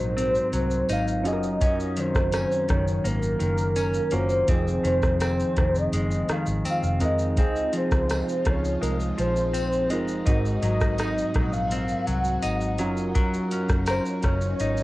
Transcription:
Already playing: fingered electric bass A#1, clean electric guitar G#2 F#3 D#4, synth keys C4 D#4 F#4 A#4, soft synth lead C5
0.16 clean electric guitar C4, closed hi-hat, shaker
0.35 shaker
0.53 fingered electric bass C2, clean electric guitar F#3, closed hi-hat, shaker
0.70 shaker
0.88 fingered electric bass G#1, clean electric guitar D#4, soft synth lead F5, closed hi-hat, tambourine, shaker
1.07 shaker
1.23 fingered electric bass F#1, clean electric guitar F#2, synth keys C#4 F4 F#4 G#4, soft synth lead D#5, closed hi-hat, shaker
1.32 synth keys A#4
1.43 shaker
1.61 clean electric guitar F#2 C#4, soft synth lead D#5, kick, closed hi-hat, shaker
1.80 shaker
1.96 clean electric guitar D#3, soft synth lead C5, closed hi-hat, shaker
2.15 fingered electric bass F#1, kick, cross-stick, shaker
2.32 clean electric guitar C#4, cross-stick, closed hi-hat, tambourine, shaker
2.52 shaker
2.69 fingered electric bass F#1, clean electric guitar D#3, soft synth lead C#5, kick, cross-stick, closed hi-hat, shaker
2.88 shaker
3.04 fingered electric bass G#1, clean electric guitar A#3, soft synth lead A#4, closed hi-hat, shaker
3.23 shaker
3.40 fingered electric bass F#1, clean electric guitar D#3, soft synth lead A#4, closed hi-hat, shaker
3.58 shaker
3.76 clean electric guitar C#4, closed hi-hat, tambourine, shaker
3.94 shaker
4.11 fingered electric bass F#1, clean electric guitar A#3, synth keys C#4 F4 F#4 A#4, soft synth lead C5, closed hi-hat, shaker
4.30 shaker
4.48 fingered electric bass F1, clean electric guitar F2 C4, synth keys C4 D#4 F4 G#4, kick, closed hi-hat, shaker
4.68 shaker
4.84 fingered electric bass F1, clean electric guitar D#3, soft synth lead C5, closed hi-hat, shaker
5.03 kick, cross-stick, shaker
5.20 clean electric guitar C4, cross-stick, closed hi-hat, tambourine, shaker
5.40 shaker
5.57 fingered electric bass F1, clean electric guitar D#3, kick, cross-stick, closed hi-hat, shaker
5.75 soft synth lead D#5, shaker
5.93 fingered electric bass F#1, clean electric guitar G#3, closed hi-hat, shaker
6.11 shaker
6.29 clean electric guitar D#3, soft synth lead F5, muted fingered electric bass stroke, cross-stick, closed hi-hat, shaker
6.46 fingered electric bass G#1, shaker
6.65 clean electric guitar C4, closed hi-hat, tambourine, shaker
6.69 soft synth lead F5
6.83 fingered electric bass F1, shaker
7.00 fingered electric bass F2, clean electric guitar G#3, synth keys C4 D#4 F4 A#4, closed hi-hat, shaker
7.05 soft synth lead D#5
7.19 shaker
7.37 fingered electric bass C#2, string machine C3 G#3 D#4 F4, synth keys C4 D#4 F4 G#4, clean electric guitar C4, soft synth lead D#5, kick, closed hi-hat, shaker
7.56 shaker
7.73 clean electric guitar F3, closed hi-hat, shaker
7.77 soft synth lead C5
7.92 fingered electric bass C#2, kick, cross-stick, shaker
8.10 cross-stick, closed hi-hat, tambourine, shaker
8.29 shaker
8.45 fingered electric bass C#2, clean electric guitar F3, kick, cross-stick, closed hi-hat, shaker
8.49 soft synth lead C#5
8.65 shaker
8.82 fingered electric bass C2, clean electric guitar G#3, soft synth lead A#4, closed hi-hat, shaker
9.00 shaker
9.18 fingered electric bass A#1, clean electric guitar F3, soft synth lead C5, closed hi-hat, shaker
9.36 shaker
9.54 clean electric guitar C4, closed hi-hat, tambourine, shaker
9.73 shaker
9.90 fingered electric bass F#1, clean electric guitar G#3, synth keys C4 D#4 F4 A#4, soft synth lead D#5, closed hi-hat, shaker
10.08 shaker
10.26 fingered electric bass G#1, clean electric guitar G#2 D#4, synth keys C4 D#4 F#4 A#4, string machine F#4, kick, closed hi-hat, shaker
10.45 shaker
10.61 fingered electric bass G#1, clean electric guitar F#3, soft synth lead D#5, closed hi-hat, shaker
10.81 kick, cross-stick, shaker
10.98 clean electric guitar D#4, cross-stick, closed hi-hat, tambourine, shaker
11.18 shaker
11.34 fingered electric bass A#1, clean electric guitar F#3, kick, cross-stick, closed hi-hat, shaker
11.53 soft synth lead F5, shaker
11.71 clean electric guitar C4, closed hi-hat, shaker
11.88 shaker
12.05 fingered electric bass C2, clean electric guitar F#3, soft synth lead F#5, closed hi-hat, shaker
12.24 shaker
12.42 fingered electric bass G#1, clean electric guitar D#4, closed hi-hat, tambourine, shaker
12.61 shaker
12.78 fingered electric bass F#1, clean electric guitar F#3, string machine F#3 C#4 D#4, synth keys C#4 F4 F#4 A#4, closed hi-hat, shaker
12.97 shaker
13.15 clean electric guitar F#3 A#4, kick, closed hi-hat, shaker
13.34 shaker
13.51 clean electric guitar C#4, closed hi-hat, shaker
13.69 fingered electric bass F#1, kick, cross-stick, shaker
13.86 clean electric guitar A#4, soft synth lead C5, cross-stick, closed hi-hat, tambourine, shaker
14.06 shaker
14.23 fingered electric bass F#1, clean electric guitar C#4, soft synth lead C#5, kick, cross-stick, closed hi-hat, shaker
14.41 shaker
14.60 fingered electric bass G#1, clean electric guitar D#4, closed hi-hat, shaker
14.77 shaker

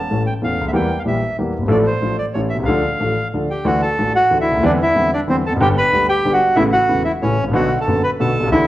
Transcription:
Already playing: bandoneon A5
0.11 grand piano A1 A2 E3 A3 C#4 A4
0.27 bandoneon G5
0.42 grand piano E1 E2 E3 A3 C#4 A4, bandoneon F5
0.61 grand piano C#2
0.67 grand piano D2 D#2, bandoneon E5
0.73 grand piano E2 E3 G3 A#3 G4, bandoneon G5
0.99 bandoneon F5
1.05 grand piano A#1 A#2 E3 G3 A#3 G4, bandoneon E5
1.39 grand piano E2 E3 G3 A#3 G4
1.58 grand piano F#1
1.62 grand piano G1 G#1
1.68 grand piano A1 A2 F3 A3 D4 A4, bandoneon D5
1.86 bandoneon C5
2.01 grand piano A1 A2 F3 A3 D4 A4
2.18 bandoneon D5
2.33 grand piano A1 A2 E3 A3 C#4 A4, bandoneon C#5
2.50 bandoneon E5
2.55 grand piano B1
2.60 grand piano C2 C#2
2.65 grand piano D2 D3 F3 A3 D4 A4, bandoneon F5
3.00 grand piano A1 A2 F3 A3 D4 A4
3.34 grand piano D2 D3 F3 A3 D4 A4
3.50 bandoneon G4 G5
3.65 grand piano D2 D3 E3 A3 D4 F#4, bandoneon F#4 F#5
3.82 bandoneon A4 A5
3.98 grand piano A1 A2 E3 A3 D4 F#4
4.15 bandoneon F#4 F#5
4.30 grand piano D2 D3 E3 A3 D4 F#4
4.41 bandoneon E4 E5
4.51 grand piano C#2
4.55 grand piano D2
4.60 grand piano D#2 E2 D3 E3 G3 C4 E4
4.65 bandoneon D4 D5
4.82 bandoneon E4 E5
4.95 grand piano E2 D3 E3 G3 C4 E4
5.14 bandoneon D4 D5
5.27 grand piano E2 D3 E3 G3 C4 E4, bandoneon C4 C5
5.46 grand piano E2, bandoneon A4 A5
5.53 grand piano F2 F#2
5.60 grand piano G1 G2 D3 G3 B3 G4, bandoneon G4 G5
5.78 bandoneon B4 B5
5.92 grand piano D2 D3 G3 B3 G4
6.09 bandoneon G4 G5
6.25 grand piano G1 G2 D3 G3 B3 G4
6.33 bandoneon F#4 F#5
6.56 grand piano A1 A2 C#3 A3 B3 E4, bandoneon E4 E5
6.72 bandoneon F#4 F#5
6.89 grand piano E1 E2 C#3 A3 B3 E4
7.05 bandoneon E4 E5
7.22 grand piano A1 A2 C#3 A3 B3 E4, bandoneon C#4 C#5
7.42 grand piano G#1
7.47 grand piano A1 A#1
7.53 grand piano B1 B2 D3 A3 B3 F#4, bandoneon F#4 F#5
7.81 bandoneon A4 A5
7.87 grand piano F#1 F#2 D3 A3 B3 F#4
8.04 bandoneon B4 B5
8.20 grand piano B1 B2 D3 A3 B3 F#4, bandoneon A4 A5
8.40 grand piano B1 C2
8.47 grand piano C#2
8.52 grand piano D2 D3 E3 A3 E4, bandoneon E4 E5

